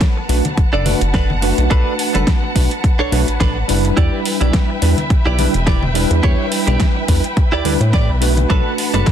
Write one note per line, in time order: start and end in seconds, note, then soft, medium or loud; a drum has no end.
0.00 9.12 B4 medium
0.00 3.93 F#5 medium
0.00 3.93 A5 medium
0.00 kick loud
0.00 snare loud
0.00 closed hi-hat medium
0.16 muted clean electric guitar stroke soft
0.29 0.41 B1 medium
0.29 0.43 A3 medium
0.29 0.43 D4 medium
0.29 0.43 F#4 medium
0.29 0.43 B4 medium
0.29 open hi-hat loud
0.45 closed hi-hat medium
0.45 low conga medium
0.57 0.70 F#1 soft
0.57 kick loud
0.57 closed hi-hat medium
0.73 0.95 F#1 loud
0.73 0.93 D4 loud
0.73 0.94 A4 medium
0.73 0.94 D5 loud
0.85 0.99 A3 medium
0.85 0.99 D4 medium
0.85 1.00 F#4 medium
0.85 1.00 B4 loud
0.85 open hi-hat loud
0.85 low conga medium
1.01 1.53 F#1 medium
1.01 closed hi-hat medium
1.14 1.30 D4 medium
1.14 1.30 A4 medium
1.14 1.30 B4 medium
1.14 kick loud
1.14 snare loud
1.14 closed hi-hat soft
1.30 low conga loud
1.41 2.52 A3 medium
1.41 2.53 D4 medium
1.41 2.53 F#4 medium
1.41 2.53 B4 loud
1.41 muted clean electric guitar stroke soft
1.41 open hi-hat medium
1.58 1.68 B1 loud
1.58 closed hi-hat medium
1.70 1.83 B1 loud
1.70 1.92 D4 loud
1.70 1.93 A4 medium
1.70 1.93 B4 loud
1.70 kick loud
1.70 closed hi-hat soft
1.99 open hi-hat loud
2.14 2.25 F#1 medium
2.14 2.27 D4 medium
2.14 2.27 A4 medium
2.14 2.28 B4 medium
2.14 closed hi-hat medium
2.14 high conga medium
2.27 kick loud
2.27 snare loud
2.27 closed hi-hat soft
2.43 muted clean electric guitar stroke soft
2.55 2.68 B1 medium
2.55 2.69 A3 medium
2.55 2.69 D4 medium
2.55 2.69 F#4 medium
2.55 2.70 B4 medium
2.55 kick medium
2.55 open hi-hat loud
2.71 closed hi-hat medium
2.84 kick loud
2.84 closed hi-hat medium
2.99 3.10 B1 soft
2.99 3.20 D4 loud
2.99 3.20 A4 loud
2.99 3.20 C#5 loud
3.12 3.24 B1 medium
3.12 3.26 A3 loud
3.12 3.26 D4 medium
3.12 3.26 F#4 medium
3.12 3.26 B4 loud
3.12 open hi-hat loud
3.28 3.38 A1 soft
3.28 closed hi-hat medium
3.40 3.63 A1 medium
3.40 3.56 D4 medium
3.40 3.56 A4 medium
3.40 3.57 B4 medium
3.40 kick loud
3.40 snare loud
3.40 closed hi-hat soft
3.68 3.92 F#1 medium
3.68 4.79 G3 medium
3.68 4.79 D4 medium
3.68 4.79 E4 medium
3.68 4.80 B4 loud
3.68 muted clean electric guitar stroke soft
3.68 open hi-hat loud
3.85 closed hi-hat medium
3.97 4.09 E2 loud
3.97 4.19 E4 loud
3.97 4.19 G4 loud
3.97 4.19 D5 loud
3.97 8.46 E5 medium
3.97 8.46 G5 medium
3.97 kick loud
3.97 closed hi-hat soft
4.25 open hi-hat loud
4.41 4.51 B1 medium
4.41 4.53 E4 medium
4.41 4.54 G4 medium
4.41 4.54 D5 medium
4.41 closed hi-hat medium
4.41 high conga medium
4.53 kick loud
4.53 snare loud
4.53 closed hi-hat soft
4.69 muted clean electric guitar stroke soft
4.82 4.94 E2 medium
4.82 4.96 G3 medium
4.82 4.96 D4 medium
4.82 4.96 E4 medium
4.82 4.96 B4 medium
4.82 open hi-hat loud
4.97 closed hi-hat medium
4.97 low conga medium
5.10 5.23 B1 soft
5.10 kick loud
5.10 closed hi-hat soft
5.25 5.48 B1 loud
5.25 5.46 E4 loud
5.25 5.47 G4 loud
5.25 5.47 D5 loud
5.38 5.52 G3 loud
5.38 5.52 D4 medium
5.38 5.53 E4 medium
5.38 5.53 B4 loud
5.38 open hi-hat loud
5.38 low conga medium
5.54 6.06 E1 medium
5.54 closed hi-hat medium
5.67 5.82 E4 medium
5.67 5.83 G4 medium
5.67 5.83 D5 medium
5.67 kick loud
5.67 snare loud
5.67 closed hi-hat soft
5.83 low conga medium
5.94 7.05 G3 medium
5.94 7.05 D4 medium
5.94 7.06 E4 medium
5.94 7.06 B4 loud
5.94 muted clean electric guitar stroke soft
5.94 open hi-hat loud
6.11 6.21 E2 loud
6.11 closed hi-hat medium
6.23 6.36 E2 medium
6.23 6.45 E4 loud
6.23 6.46 G4 medium
6.23 6.46 C#5 loud
6.23 kick loud
6.23 closed hi-hat soft
6.52 open hi-hat loud
6.67 6.77 B1 medium
6.67 6.80 E4 medium
6.67 6.80 G4 medium
6.67 6.80 D5 medium
6.67 closed hi-hat medium
6.67 high conga medium
6.80 kick loud
6.80 snare loud
6.80 closed hi-hat soft
6.95 muted clean electric guitar stroke soft
7.08 7.21 E2 medium
7.08 7.22 G3 medium
7.08 7.22 D4 medium
7.08 7.22 E4 medium
7.08 7.22 B4 medium
7.08 kick medium
7.08 open hi-hat loud
7.24 closed hi-hat medium
7.37 kick loud
7.37 closed hi-hat soft
7.52 7.62 D2 soft
7.52 7.73 E4 loud
7.52 7.73 G4 loud
7.52 7.73 D5 loud
7.64 7.77 D2 medium
7.64 7.78 G3 medium
7.64 7.79 D4 medium
7.64 7.79 E4 medium
7.64 7.79 B4 loud
7.64 open hi-hat loud
7.80 8.10 A2 loud
7.80 closed hi-hat medium
7.93 8.09 E4 medium
7.93 8.09 G4 medium
7.93 8.09 D5 medium
7.93 kick loud
7.93 snare loud
7.93 closed hi-hat soft
8.09 8.46 B1 loud
8.21 9.12 A3 medium
8.21 9.12 D4 medium
8.21 9.12 F#4 medium
8.21 9.12 B4 loud
8.21 muted clean electric guitar stroke soft
8.21 open hi-hat loud
8.37 closed hi-hat medium
8.37 low conga medium
8.50 8.62 B1 loud
8.50 8.72 D4 loud
8.50 8.72 A4 medium
8.50 8.72 B4 loud
8.50 9.12 F#5 medium
8.50 9.12 A5 medium
8.50 kick loud
8.50 closed hi-hat soft
8.78 open hi-hat loud
8.94 9.04 F#1 medium
8.94 9.06 D4 medium
8.94 9.07 A4 medium
8.94 9.07 B4 medium
8.94 closed hi-hat medium
8.94 high conga medium
9.06 kick loud
9.06 snare loud
9.06 closed hi-hat soft